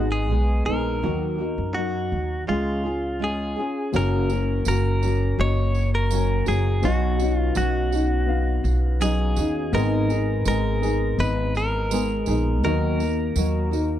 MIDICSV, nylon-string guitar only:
0, 0, Header, 1, 2, 480
1, 0, Start_track
1, 0, Key_signature, 6, "major"
1, 0, Tempo, 725514
1, 679, Time_signature, 4, 2, 24, 8
1, 9258, End_track
2, 0, Start_track
2, 0, Title_t, "Nylon-string guitar"
2, 0, Program_c, 0, 24
2, 0, Note_on_c, 0, 56, 44
2, 0, Note_on_c, 0, 59, 44
2, 0, Note_on_c, 0, 63, 44
2, 0, Note_on_c, 0, 68, 47
2, 185, Note_off_c, 0, 56, 0
2, 193, Note_on_c, 0, 56, 50
2, 194, Note_off_c, 0, 59, 0
2, 197, Note_off_c, 0, 63, 0
2, 197, Note_off_c, 0, 68, 0
2, 202, Note_on_c, 0, 59, 50
2, 205, Note_on_c, 0, 63, 51
2, 210, Note_on_c, 0, 68, 57
2, 428, Note_off_c, 0, 68, 0
2, 436, Note_off_c, 0, 56, 0
2, 436, Note_off_c, 0, 63, 0
2, 436, Note_on_c, 0, 68, 44
2, 441, Note_off_c, 0, 59, 0
2, 444, Note_on_c, 0, 63, 50
2, 450, Note_on_c, 0, 59, 45
2, 456, Note_on_c, 0, 56, 44
2, 675, Note_off_c, 0, 63, 0
2, 675, Note_on_c, 0, 51, 66
2, 677, Note_off_c, 0, 56, 0
2, 678, Note_off_c, 0, 68, 0
2, 679, Note_off_c, 0, 59, 0
2, 680, Note_on_c, 0, 54, 64
2, 681, Note_on_c, 0, 58, 74
2, 683, Note_on_c, 0, 63, 73
2, 687, Note_on_c, 0, 66, 72
2, 907, Note_off_c, 0, 66, 0
2, 915, Note_on_c, 0, 66, 46
2, 918, Note_off_c, 0, 51, 0
2, 919, Note_off_c, 0, 63, 0
2, 920, Note_off_c, 0, 54, 0
2, 921, Note_off_c, 0, 58, 0
2, 927, Note_on_c, 0, 63, 34
2, 933, Note_on_c, 0, 58, 35
2, 1151, Note_off_c, 0, 58, 0
2, 1152, Note_on_c, 0, 54, 43
2, 1157, Note_off_c, 0, 63, 0
2, 1158, Note_off_c, 0, 66, 0
2, 1159, Note_on_c, 0, 58, 49
2, 1165, Note_on_c, 0, 63, 53
2, 1171, Note_on_c, 0, 66, 45
2, 1634, Note_on_c, 0, 49, 60
2, 1635, Note_off_c, 0, 54, 0
2, 1638, Note_on_c, 0, 56, 71
2, 1640, Note_off_c, 0, 58, 0
2, 1643, Note_off_c, 0, 63, 0
2, 1644, Note_on_c, 0, 61, 67
2, 1645, Note_off_c, 0, 66, 0
2, 1648, Note_on_c, 0, 65, 64
2, 1648, Note_on_c, 0, 68, 73
2, 1867, Note_off_c, 0, 68, 0
2, 1875, Note_on_c, 0, 68, 44
2, 1877, Note_off_c, 0, 65, 0
2, 1878, Note_off_c, 0, 49, 0
2, 1880, Note_off_c, 0, 56, 0
2, 1883, Note_off_c, 0, 61, 0
2, 1885, Note_on_c, 0, 65, 47
2, 1893, Note_on_c, 0, 61, 39
2, 2112, Note_off_c, 0, 61, 0
2, 2112, Note_on_c, 0, 56, 52
2, 2117, Note_off_c, 0, 65, 0
2, 2118, Note_off_c, 0, 68, 0
2, 2120, Note_on_c, 0, 61, 52
2, 2125, Note_on_c, 0, 65, 56
2, 2132, Note_on_c, 0, 68, 54
2, 2349, Note_off_c, 0, 68, 0
2, 2357, Note_off_c, 0, 56, 0
2, 2357, Note_on_c, 0, 68, 49
2, 2359, Note_off_c, 0, 65, 0
2, 2361, Note_off_c, 0, 61, 0
2, 2367, Note_on_c, 0, 65, 54
2, 2376, Note_on_c, 0, 61, 49
2, 2598, Note_on_c, 0, 42, 80
2, 2600, Note_off_c, 0, 68, 0
2, 2602, Note_off_c, 0, 61, 0
2, 2604, Note_on_c, 0, 49, 76
2, 2604, Note_on_c, 0, 54, 83
2, 2605, Note_off_c, 0, 65, 0
2, 2607, Note_on_c, 0, 58, 81
2, 2610, Note_on_c, 0, 61, 81
2, 2611, Note_on_c, 0, 66, 89
2, 2833, Note_off_c, 0, 66, 0
2, 2840, Note_off_c, 0, 42, 0
2, 2840, Note_off_c, 0, 61, 0
2, 2841, Note_on_c, 0, 66, 47
2, 2843, Note_off_c, 0, 49, 0
2, 2843, Note_off_c, 0, 54, 0
2, 2845, Note_off_c, 0, 58, 0
2, 2848, Note_on_c, 0, 61, 48
2, 2852, Note_on_c, 0, 58, 43
2, 2860, Note_on_c, 0, 54, 43
2, 3071, Note_off_c, 0, 54, 0
2, 3078, Note_off_c, 0, 58, 0
2, 3078, Note_on_c, 0, 54, 49
2, 3082, Note_off_c, 0, 66, 0
2, 3084, Note_off_c, 0, 61, 0
2, 3086, Note_on_c, 0, 58, 59
2, 3091, Note_on_c, 0, 61, 54
2, 3096, Note_on_c, 0, 66, 50
2, 3313, Note_off_c, 0, 66, 0
2, 3319, Note_off_c, 0, 61, 0
2, 3320, Note_off_c, 0, 54, 0
2, 3321, Note_on_c, 0, 66, 49
2, 3324, Note_off_c, 0, 58, 0
2, 3327, Note_on_c, 0, 61, 51
2, 3333, Note_on_c, 0, 58, 43
2, 3338, Note_on_c, 0, 54, 39
2, 4035, Note_off_c, 0, 54, 0
2, 4037, Note_off_c, 0, 58, 0
2, 4038, Note_on_c, 0, 54, 65
2, 4045, Note_on_c, 0, 58, 67
2, 4050, Note_off_c, 0, 61, 0
2, 4052, Note_on_c, 0, 61, 68
2, 4054, Note_off_c, 0, 66, 0
2, 4057, Note_on_c, 0, 66, 66
2, 4268, Note_off_c, 0, 66, 0
2, 4276, Note_on_c, 0, 66, 56
2, 4277, Note_off_c, 0, 61, 0
2, 4280, Note_off_c, 0, 54, 0
2, 4281, Note_off_c, 0, 58, 0
2, 4285, Note_on_c, 0, 61, 54
2, 4289, Note_on_c, 0, 58, 51
2, 4295, Note_on_c, 0, 54, 47
2, 4511, Note_off_c, 0, 54, 0
2, 4515, Note_off_c, 0, 61, 0
2, 4516, Note_on_c, 0, 47, 78
2, 4519, Note_off_c, 0, 66, 0
2, 4519, Note_on_c, 0, 54, 80
2, 4520, Note_off_c, 0, 58, 0
2, 4523, Note_on_c, 0, 61, 76
2, 4525, Note_on_c, 0, 63, 78
2, 4529, Note_on_c, 0, 66, 76
2, 4747, Note_off_c, 0, 66, 0
2, 4755, Note_on_c, 0, 66, 50
2, 4759, Note_off_c, 0, 47, 0
2, 4759, Note_off_c, 0, 63, 0
2, 4761, Note_off_c, 0, 54, 0
2, 4762, Note_off_c, 0, 61, 0
2, 4767, Note_on_c, 0, 63, 46
2, 4775, Note_on_c, 0, 61, 39
2, 4991, Note_off_c, 0, 61, 0
2, 4994, Note_on_c, 0, 54, 51
2, 4998, Note_off_c, 0, 66, 0
2, 4999, Note_off_c, 0, 63, 0
2, 4999, Note_on_c, 0, 61, 50
2, 5007, Note_on_c, 0, 63, 55
2, 5012, Note_on_c, 0, 66, 55
2, 5228, Note_off_c, 0, 66, 0
2, 5236, Note_on_c, 0, 66, 49
2, 5237, Note_off_c, 0, 63, 0
2, 5238, Note_off_c, 0, 54, 0
2, 5240, Note_off_c, 0, 61, 0
2, 5245, Note_on_c, 0, 63, 44
2, 5254, Note_on_c, 0, 61, 42
2, 5951, Note_off_c, 0, 61, 0
2, 5953, Note_on_c, 0, 54, 54
2, 5959, Note_off_c, 0, 66, 0
2, 5959, Note_on_c, 0, 61, 63
2, 5960, Note_off_c, 0, 63, 0
2, 5962, Note_on_c, 0, 63, 64
2, 5969, Note_on_c, 0, 66, 74
2, 6187, Note_off_c, 0, 66, 0
2, 6195, Note_on_c, 0, 66, 60
2, 6197, Note_off_c, 0, 54, 0
2, 6199, Note_off_c, 0, 63, 0
2, 6200, Note_off_c, 0, 61, 0
2, 6207, Note_on_c, 0, 63, 49
2, 6214, Note_on_c, 0, 61, 51
2, 6435, Note_on_c, 0, 44, 82
2, 6438, Note_off_c, 0, 66, 0
2, 6439, Note_on_c, 0, 51, 79
2, 6440, Note_off_c, 0, 63, 0
2, 6443, Note_off_c, 0, 61, 0
2, 6444, Note_on_c, 0, 56, 92
2, 6446, Note_on_c, 0, 59, 86
2, 6448, Note_on_c, 0, 63, 92
2, 6449, Note_on_c, 0, 68, 79
2, 6673, Note_off_c, 0, 68, 0
2, 6678, Note_off_c, 0, 44, 0
2, 6680, Note_off_c, 0, 51, 0
2, 6681, Note_off_c, 0, 63, 0
2, 6681, Note_on_c, 0, 68, 52
2, 6682, Note_off_c, 0, 56, 0
2, 6683, Note_off_c, 0, 59, 0
2, 6689, Note_on_c, 0, 63, 46
2, 6693, Note_on_c, 0, 59, 42
2, 6697, Note_on_c, 0, 56, 39
2, 6907, Note_off_c, 0, 56, 0
2, 6912, Note_off_c, 0, 59, 0
2, 6915, Note_on_c, 0, 56, 51
2, 6920, Note_off_c, 0, 63, 0
2, 6920, Note_on_c, 0, 59, 59
2, 6921, Note_off_c, 0, 68, 0
2, 6928, Note_on_c, 0, 63, 61
2, 6931, Note_on_c, 0, 68, 60
2, 7151, Note_off_c, 0, 68, 0
2, 7157, Note_off_c, 0, 63, 0
2, 7158, Note_off_c, 0, 56, 0
2, 7159, Note_on_c, 0, 68, 58
2, 7160, Note_off_c, 0, 59, 0
2, 7165, Note_on_c, 0, 63, 42
2, 7172, Note_on_c, 0, 59, 44
2, 7174, Note_on_c, 0, 56, 44
2, 7869, Note_off_c, 0, 56, 0
2, 7877, Note_off_c, 0, 59, 0
2, 7877, Note_on_c, 0, 56, 60
2, 7879, Note_off_c, 0, 68, 0
2, 7884, Note_on_c, 0, 59, 66
2, 7886, Note_off_c, 0, 63, 0
2, 7889, Note_on_c, 0, 63, 54
2, 7896, Note_on_c, 0, 68, 63
2, 8112, Note_off_c, 0, 68, 0
2, 8118, Note_off_c, 0, 56, 0
2, 8118, Note_off_c, 0, 63, 0
2, 8120, Note_on_c, 0, 68, 52
2, 8122, Note_off_c, 0, 59, 0
2, 8126, Note_on_c, 0, 63, 52
2, 8133, Note_on_c, 0, 59, 48
2, 8139, Note_on_c, 0, 56, 45
2, 8359, Note_on_c, 0, 51, 84
2, 8360, Note_off_c, 0, 56, 0
2, 8360, Note_off_c, 0, 68, 0
2, 8363, Note_off_c, 0, 63, 0
2, 8363, Note_on_c, 0, 54, 79
2, 8364, Note_off_c, 0, 59, 0
2, 8367, Note_on_c, 0, 58, 79
2, 8370, Note_on_c, 0, 63, 79
2, 8373, Note_on_c, 0, 66, 88
2, 8591, Note_off_c, 0, 66, 0
2, 8599, Note_off_c, 0, 51, 0
2, 8599, Note_on_c, 0, 66, 52
2, 8600, Note_off_c, 0, 63, 0
2, 8601, Note_off_c, 0, 54, 0
2, 8603, Note_off_c, 0, 58, 0
2, 8608, Note_on_c, 0, 63, 44
2, 8615, Note_on_c, 0, 58, 40
2, 8833, Note_off_c, 0, 58, 0
2, 8833, Note_on_c, 0, 54, 54
2, 8839, Note_off_c, 0, 66, 0
2, 8840, Note_off_c, 0, 63, 0
2, 8841, Note_on_c, 0, 58, 57
2, 8848, Note_on_c, 0, 63, 54
2, 8851, Note_on_c, 0, 66, 60
2, 9064, Note_off_c, 0, 66, 0
2, 9072, Note_on_c, 0, 66, 55
2, 9074, Note_off_c, 0, 63, 0
2, 9076, Note_off_c, 0, 54, 0
2, 9080, Note_off_c, 0, 58, 0
2, 9082, Note_on_c, 0, 63, 47
2, 9090, Note_on_c, 0, 58, 44
2, 9258, Note_off_c, 0, 58, 0
2, 9258, Note_off_c, 0, 63, 0
2, 9258, Note_off_c, 0, 66, 0
2, 9258, End_track
0, 0, End_of_file